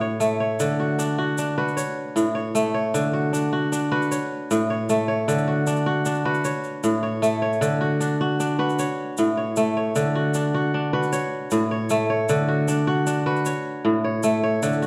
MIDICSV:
0, 0, Header, 1, 3, 480
1, 0, Start_track
1, 0, Key_signature, 2, "major"
1, 0, Tempo, 389864
1, 736, Time_signature, 12, 3, 24, 8
1, 18304, End_track
2, 0, Start_track
2, 0, Title_t, "Kora"
2, 0, Program_c, 0, 46
2, 0, Note_on_c, 0, 45, 70
2, 0, Note_on_c, 0, 66, 78
2, 0, Note_on_c, 0, 71, 69
2, 13, Note_on_c, 0, 73, 67
2, 247, Note_on_c, 0, 57, 74
2, 491, Note_off_c, 0, 73, 0
2, 496, Note_on_c, 0, 73, 63
2, 559, Note_off_c, 0, 71, 0
2, 738, Note_on_c, 0, 50, 82
2, 798, Note_off_c, 0, 45, 0
2, 843, Note_off_c, 0, 66, 0
2, 981, Note_on_c, 0, 66, 62
2, 1215, Note_on_c, 0, 62, 67
2, 1289, Note_off_c, 0, 73, 0
2, 1453, Note_off_c, 0, 66, 0
2, 1457, Note_on_c, 0, 66, 80
2, 1701, Note_off_c, 0, 62, 0
2, 1706, Note_on_c, 0, 62, 63
2, 1937, Note_off_c, 0, 66, 0
2, 1942, Note_on_c, 0, 66, 75
2, 1942, Note_on_c, 0, 71, 65
2, 2176, Note_on_c, 0, 73, 67
2, 2243, Note_off_c, 0, 50, 0
2, 2656, Note_on_c, 0, 45, 73
2, 2706, Note_off_c, 0, 57, 0
2, 2887, Note_off_c, 0, 73, 0
2, 2891, Note_on_c, 0, 73, 69
2, 2965, Note_off_c, 0, 62, 0
2, 3137, Note_on_c, 0, 57, 78
2, 3372, Note_off_c, 0, 73, 0
2, 3377, Note_on_c, 0, 73, 66
2, 3455, Note_off_c, 0, 71, 0
2, 3622, Note_on_c, 0, 50, 83
2, 3686, Note_off_c, 0, 45, 0
2, 3742, Note_off_c, 0, 66, 0
2, 3858, Note_on_c, 0, 66, 62
2, 4097, Note_on_c, 0, 62, 62
2, 4171, Note_off_c, 0, 73, 0
2, 4336, Note_off_c, 0, 66, 0
2, 4341, Note_on_c, 0, 66, 81
2, 4576, Note_off_c, 0, 62, 0
2, 4581, Note_on_c, 0, 62, 63
2, 4816, Note_off_c, 0, 66, 0
2, 4821, Note_on_c, 0, 66, 82
2, 4822, Note_on_c, 0, 71, 68
2, 5065, Note_on_c, 0, 73, 67
2, 5129, Note_off_c, 0, 50, 0
2, 5550, Note_on_c, 0, 45, 77
2, 5596, Note_off_c, 0, 57, 0
2, 5783, Note_off_c, 0, 73, 0
2, 5788, Note_on_c, 0, 73, 65
2, 5862, Note_off_c, 0, 62, 0
2, 6026, Note_on_c, 0, 57, 78
2, 6250, Note_off_c, 0, 73, 0
2, 6255, Note_on_c, 0, 73, 67
2, 6336, Note_off_c, 0, 71, 0
2, 6501, Note_on_c, 0, 50, 87
2, 6570, Note_off_c, 0, 45, 0
2, 6621, Note_off_c, 0, 66, 0
2, 6742, Note_on_c, 0, 66, 63
2, 6981, Note_on_c, 0, 62, 64
2, 7055, Note_off_c, 0, 73, 0
2, 7214, Note_off_c, 0, 66, 0
2, 7219, Note_on_c, 0, 66, 88
2, 7454, Note_off_c, 0, 62, 0
2, 7459, Note_on_c, 0, 62, 62
2, 7695, Note_off_c, 0, 66, 0
2, 7699, Note_on_c, 0, 71, 69
2, 7700, Note_on_c, 0, 66, 85
2, 7938, Note_on_c, 0, 73, 67
2, 8010, Note_off_c, 0, 50, 0
2, 8417, Note_on_c, 0, 45, 68
2, 8485, Note_off_c, 0, 57, 0
2, 8647, Note_off_c, 0, 73, 0
2, 8652, Note_on_c, 0, 73, 67
2, 8726, Note_off_c, 0, 62, 0
2, 8891, Note_on_c, 0, 57, 76
2, 9129, Note_off_c, 0, 73, 0
2, 9134, Note_on_c, 0, 73, 67
2, 9212, Note_off_c, 0, 71, 0
2, 9371, Note_on_c, 0, 50, 84
2, 9448, Note_off_c, 0, 45, 0
2, 9500, Note_off_c, 0, 66, 0
2, 9613, Note_on_c, 0, 66, 69
2, 9854, Note_on_c, 0, 62, 59
2, 9928, Note_off_c, 0, 73, 0
2, 10100, Note_off_c, 0, 66, 0
2, 10105, Note_on_c, 0, 66, 81
2, 10335, Note_off_c, 0, 62, 0
2, 10340, Note_on_c, 0, 62, 66
2, 10569, Note_off_c, 0, 66, 0
2, 10574, Note_on_c, 0, 66, 80
2, 10579, Note_on_c, 0, 71, 67
2, 10825, Note_on_c, 0, 73, 69
2, 10886, Note_off_c, 0, 50, 0
2, 11308, Note_on_c, 0, 45, 72
2, 11350, Note_off_c, 0, 57, 0
2, 11534, Note_off_c, 0, 73, 0
2, 11539, Note_on_c, 0, 73, 69
2, 11613, Note_off_c, 0, 62, 0
2, 11782, Note_on_c, 0, 57, 75
2, 12021, Note_off_c, 0, 73, 0
2, 12026, Note_on_c, 0, 73, 67
2, 12092, Note_off_c, 0, 71, 0
2, 12258, Note_on_c, 0, 50, 85
2, 12324, Note_off_c, 0, 45, 0
2, 12374, Note_off_c, 0, 66, 0
2, 12501, Note_on_c, 0, 66, 66
2, 12741, Note_on_c, 0, 62, 60
2, 12815, Note_off_c, 0, 73, 0
2, 12976, Note_off_c, 0, 66, 0
2, 12981, Note_on_c, 0, 66, 81
2, 13220, Note_off_c, 0, 62, 0
2, 13225, Note_on_c, 0, 62, 63
2, 13454, Note_off_c, 0, 66, 0
2, 13458, Note_on_c, 0, 71, 66
2, 13459, Note_on_c, 0, 66, 78
2, 13697, Note_on_c, 0, 73, 69
2, 13760, Note_off_c, 0, 50, 0
2, 14179, Note_on_c, 0, 45, 76
2, 14241, Note_off_c, 0, 57, 0
2, 14414, Note_off_c, 0, 73, 0
2, 14419, Note_on_c, 0, 73, 68
2, 14493, Note_off_c, 0, 62, 0
2, 14657, Note_on_c, 0, 57, 80
2, 14890, Note_off_c, 0, 73, 0
2, 14895, Note_on_c, 0, 73, 67
2, 14972, Note_off_c, 0, 71, 0
2, 15136, Note_on_c, 0, 50, 87
2, 15197, Note_off_c, 0, 45, 0
2, 15259, Note_off_c, 0, 66, 0
2, 15371, Note_on_c, 0, 66, 66
2, 15612, Note_on_c, 0, 62, 65
2, 15686, Note_off_c, 0, 73, 0
2, 15844, Note_off_c, 0, 66, 0
2, 15848, Note_on_c, 0, 66, 86
2, 16081, Note_off_c, 0, 62, 0
2, 16086, Note_on_c, 0, 62, 65
2, 16322, Note_off_c, 0, 66, 0
2, 16326, Note_on_c, 0, 66, 78
2, 16329, Note_on_c, 0, 71, 67
2, 16573, Note_on_c, 0, 73, 72
2, 16634, Note_off_c, 0, 50, 0
2, 17048, Note_on_c, 0, 45, 81
2, 17116, Note_off_c, 0, 57, 0
2, 17286, Note_off_c, 0, 73, 0
2, 17291, Note_on_c, 0, 73, 65
2, 17365, Note_off_c, 0, 62, 0
2, 17528, Note_on_c, 0, 57, 76
2, 17767, Note_off_c, 0, 73, 0
2, 17772, Note_on_c, 0, 73, 66
2, 17843, Note_off_c, 0, 71, 0
2, 18009, Note_on_c, 0, 50, 81
2, 18072, Note_off_c, 0, 45, 0
2, 18127, Note_off_c, 0, 66, 0
2, 18250, Note_on_c, 0, 66, 60
2, 18304, Note_off_c, 0, 50, 0
2, 18304, Note_off_c, 0, 57, 0
2, 18304, Note_off_c, 0, 66, 0
2, 18304, Note_off_c, 0, 73, 0
2, 18304, End_track
3, 0, Start_track
3, 0, Title_t, "Drums"
3, 254, Note_on_c, 9, 82, 69
3, 377, Note_off_c, 9, 82, 0
3, 733, Note_on_c, 9, 82, 73
3, 857, Note_off_c, 9, 82, 0
3, 1223, Note_on_c, 9, 82, 76
3, 1346, Note_off_c, 9, 82, 0
3, 1697, Note_on_c, 9, 82, 77
3, 1820, Note_off_c, 9, 82, 0
3, 2070, Note_on_c, 9, 82, 24
3, 2187, Note_off_c, 9, 82, 0
3, 2187, Note_on_c, 9, 82, 77
3, 2310, Note_off_c, 9, 82, 0
3, 2667, Note_on_c, 9, 82, 74
3, 2791, Note_off_c, 9, 82, 0
3, 3144, Note_on_c, 9, 82, 73
3, 3267, Note_off_c, 9, 82, 0
3, 3627, Note_on_c, 9, 82, 72
3, 3750, Note_off_c, 9, 82, 0
3, 4113, Note_on_c, 9, 82, 67
3, 4236, Note_off_c, 9, 82, 0
3, 4588, Note_on_c, 9, 82, 72
3, 4711, Note_off_c, 9, 82, 0
3, 4953, Note_on_c, 9, 82, 21
3, 5071, Note_off_c, 9, 82, 0
3, 5071, Note_on_c, 9, 82, 70
3, 5194, Note_off_c, 9, 82, 0
3, 5551, Note_on_c, 9, 82, 66
3, 5674, Note_off_c, 9, 82, 0
3, 6024, Note_on_c, 9, 82, 61
3, 6147, Note_off_c, 9, 82, 0
3, 6509, Note_on_c, 9, 82, 64
3, 6628, Note_off_c, 9, 82, 0
3, 6628, Note_on_c, 9, 82, 21
3, 6751, Note_off_c, 9, 82, 0
3, 6977, Note_on_c, 9, 82, 62
3, 7093, Note_off_c, 9, 82, 0
3, 7093, Note_on_c, 9, 82, 20
3, 7216, Note_off_c, 9, 82, 0
3, 7452, Note_on_c, 9, 82, 59
3, 7569, Note_off_c, 9, 82, 0
3, 7569, Note_on_c, 9, 82, 19
3, 7692, Note_off_c, 9, 82, 0
3, 7811, Note_on_c, 9, 82, 19
3, 7934, Note_off_c, 9, 82, 0
3, 7934, Note_on_c, 9, 82, 60
3, 8057, Note_off_c, 9, 82, 0
3, 8173, Note_on_c, 9, 82, 19
3, 8296, Note_off_c, 9, 82, 0
3, 8416, Note_on_c, 9, 82, 57
3, 8539, Note_off_c, 9, 82, 0
3, 8904, Note_on_c, 9, 82, 59
3, 9027, Note_off_c, 9, 82, 0
3, 9270, Note_on_c, 9, 82, 17
3, 9385, Note_off_c, 9, 82, 0
3, 9385, Note_on_c, 9, 82, 57
3, 9508, Note_off_c, 9, 82, 0
3, 9860, Note_on_c, 9, 82, 57
3, 9983, Note_off_c, 9, 82, 0
3, 10346, Note_on_c, 9, 82, 65
3, 10469, Note_off_c, 9, 82, 0
3, 10704, Note_on_c, 9, 82, 20
3, 10821, Note_off_c, 9, 82, 0
3, 10821, Note_on_c, 9, 82, 68
3, 10945, Note_off_c, 9, 82, 0
3, 11296, Note_on_c, 9, 82, 63
3, 11419, Note_off_c, 9, 82, 0
3, 11774, Note_on_c, 9, 82, 64
3, 11897, Note_off_c, 9, 82, 0
3, 12256, Note_on_c, 9, 82, 66
3, 12379, Note_off_c, 9, 82, 0
3, 12730, Note_on_c, 9, 82, 67
3, 12853, Note_off_c, 9, 82, 0
3, 13579, Note_on_c, 9, 82, 21
3, 13699, Note_off_c, 9, 82, 0
3, 13699, Note_on_c, 9, 82, 69
3, 13822, Note_off_c, 9, 82, 0
3, 14169, Note_on_c, 9, 82, 69
3, 14292, Note_off_c, 9, 82, 0
3, 14646, Note_on_c, 9, 82, 70
3, 14769, Note_off_c, 9, 82, 0
3, 15128, Note_on_c, 9, 82, 69
3, 15251, Note_off_c, 9, 82, 0
3, 15611, Note_on_c, 9, 82, 75
3, 15734, Note_off_c, 9, 82, 0
3, 16089, Note_on_c, 9, 82, 73
3, 16212, Note_off_c, 9, 82, 0
3, 16450, Note_on_c, 9, 82, 22
3, 16565, Note_off_c, 9, 82, 0
3, 16565, Note_on_c, 9, 82, 74
3, 16688, Note_off_c, 9, 82, 0
3, 17521, Note_on_c, 9, 82, 71
3, 17644, Note_off_c, 9, 82, 0
3, 18007, Note_on_c, 9, 82, 71
3, 18130, Note_off_c, 9, 82, 0
3, 18131, Note_on_c, 9, 82, 22
3, 18252, Note_off_c, 9, 82, 0
3, 18252, Note_on_c, 9, 82, 22
3, 18304, Note_off_c, 9, 82, 0
3, 18304, End_track
0, 0, End_of_file